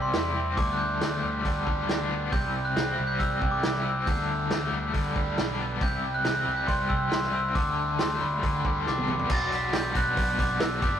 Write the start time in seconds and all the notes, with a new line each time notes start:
Already playing: C2 C3 G3 C4 E4
0.02 C6
0.13 E2 E4, snare, open hi-hat
0.35 C4
0.56 D2 D3 G3 A3 D4 D6, kick, open hi-hat
0.73 F#6
0.78 G6
1.01 D2 A3, snare, open hi-hat
1.23 D2 G3
1.43 D2 D3 G3 B3 D4, kick, open hi-hat
1.66 D2 G3, kick
1.88 D2 D4, snare, open hi-hat
2.10 B3
2.32 C2 C3 G3 C4 E4 G6, kick, open hi-hat
2.65 F#6
2.76 C2 C4, snare, open hi-hat
2.98 C2 G3
3.07 G6
3.19 C2 C3 E6, kick, open hi-hat
3.41 C2 G3, kick
3.51 D6
3.63 C2 E4, snare, open hi-hat
3.75 snare
3.83 C4 E6
4.06 D2 D3 G3 A3 D4 G6, kick, open hi-hat
4.50 D2 A3, snare, open hi-hat
4.72 D2 G3
4.94 D2 D3 G3 B3 D4, kick, open hi-hat
5.15 D2 G3, kick
5.38 B1 D4, snare, open hi-hat
5.60 B3
5.80 C2 C3 G3 C4 E4 G6, kick, open hi-hat
6.14 F#6
6.24 C2 C4, snare, open hi-hat
6.45 C2 G3
6.57 G6
6.67 C2 C3 C6, kick, open hi-hat
6.89 C2 G3 E6, kick
7.10 C2 E4 C6, snare, open hi-hat
7.23 snare
7.33 C4 E6
7.54 D2 D3 G3 A3 D4 D6, kick, open hi-hat
7.98 D2 A3 C6, snare, open hi-hat
8.21 D2 G3 B5
8.42 D2 D3 G3 B3 D4, kick, open hi-hat
8.65 D2 G3, kick
8.86 C2 D4 D6, snare
8.98 high tom
9.08 B3 D6, mid tom
9.19 floor tom
9.28 B1 B2 F#3 B3 D4 F#4 A6, kick, crash
9.33 D4 F#4
9.52 B6, open hi-hat
9.73 B1 G6, snare, open hi-hat
9.94 B1 B2 F#3 B3 D4 F#4 F#6, kick, open hi-hat
10.16 B1 B2 F#3 B3 D4 F#4, kick, open hi-hat
10.39 D6, kick, open hi-hat
10.60 B1 B2 F#3 B3 D4 F#4 E6, snare, open hi-hat
10.80 G1 G3 B3 D4 G4 D6, kick, open hi-hat
10.85 G4